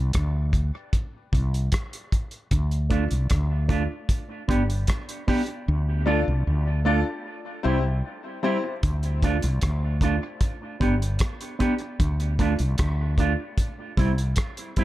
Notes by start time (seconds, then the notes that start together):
Already playing: C2
0.13 D2, kick, cross-stick, closed hi-hat
0.53 kick, closed hi-hat
0.93 kick, closed hi-hat
1.33 C2, kick, closed hi-hat
1.54 closed hi-hat
1.72 kick, cross-stick, closed hi-hat
1.93 closed hi-hat
2.12 kick, closed hi-hat
2.31 closed hi-hat
2.51 D2, kick, closed hi-hat
2.71 closed hi-hat
2.90 A3 D4 F4, kick, closed hi-hat
3.11 C2, closed hi-hat
3.30 D2, kick, cross-stick, closed hi-hat
3.68 A3 D4 F4, kick, closed hi-hat
4.09 kick, closed hi-hat
4.48 G1 B3 D4 G4, kick, closed hi-hat
4.70 closed hi-hat
4.87 kick, cross-stick, closed hi-hat
5.09 closed hi-hat
5.27 B3 D4 G4, kick, open hi-hat
5.46 muted clean electric guitar stroke, closed hi-hat
5.68 D2
6.06 A3 D4 F4 A4 D5
6.28 C2
6.47 D2
6.85 A3 D4 F4 A4 D5
7.63 C2 G3 C4 E4 G4 C5
8.43 G3 C4 E4 G4 C5
8.64 G4 C5, muted clean electric guitar stroke
8.83 D2, kick, closed hi-hat
9.03 closed hi-hat
9.23 A3 D4 F4, kick, closed hi-hat
9.42 C2, closed hi-hat
9.61 D2, kick, cross-stick, closed hi-hat
10.01 A3 D4 F4, kick, closed hi-hat
10.41 kick, closed hi-hat
10.80 G1 B3 D4 G4, kick, closed hi-hat
11.02 closed hi-hat
11.19 kick, cross-stick, closed hi-hat
11.41 closed hi-hat
11.59 B3 D4 G4, kick, cross-stick, closed hi-hat
11.79 muted clean electric guitar stroke, closed hi-hat
12.00 D2, kick, closed hi-hat
12.20 closed hi-hat
12.39 A3 D4 F4, kick, closed hi-hat
12.59 C2, closed hi-hat
12.78 D2, kick, cross-stick, closed hi-hat
13.18 A3 D4 F4, kick, closed hi-hat
13.58 kick, closed hi-hat
13.97 C2 G3 C4 E4, kick, closed hi-hat
14.18 closed hi-hat
14.36 kick, cross-stick, closed hi-hat
14.57 closed hi-hat
14.76 G3 C4 E4, kick, closed hi-hat